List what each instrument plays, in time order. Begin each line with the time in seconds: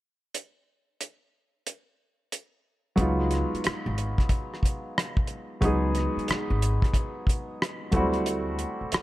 0.35 closed hi-hat
1.01 closed hi-hat
1.67 closed hi-hat
2.32 closed hi-hat
2.96 upright bass C#2, grand piano F#3 G#3 B3 D#4, kick, closed hi-hat
3.01 grand piano F4
3.31 cross-stick, closed hi-hat
3.54 muted upright bass stroke, closed hi-hat
3.64 muted upright bass stroke, cross-stick, closed hi-hat
3.86 upright bass G#1
3.98 closed hi-hat
4.18 kick, cross-stick, closed hi-hat
4.29 kick, closed hi-hat
4.54 cross-stick
4.63 kick, closed hi-hat
4.98 cross-stick, closed hi-hat
5.17 kick
5.27 closed hi-hat
5.61 upright bass C#2, grand piano F#3 G#3 B3 D#4, kick, closed hi-hat
5.65 grand piano G#4
5.95 cross-stick, closed hi-hat
6.17 muted upright bass stroke, closed hi-hat
6.28 muted upright bass stroke, cross-stick, closed hi-hat
6.50 upright bass G#1
6.62 closed hi-hat
6.82 kick, cross-stick, closed hi-hat
6.94 kick, closed hi-hat
7.27 kick, closed hi-hat
7.62 cross-stick, closed hi-hat
7.91 upright bass D2, grand piano F#3 A3 C4 E4, kick, closed hi-hat
7.96 grand piano G3 F#4
8.14 closed hi-hat
8.26 closed hi-hat
8.59 closed hi-hat
8.81 muted upright bass stroke
8.92 muted upright bass stroke, cross-stick, closed hi-hat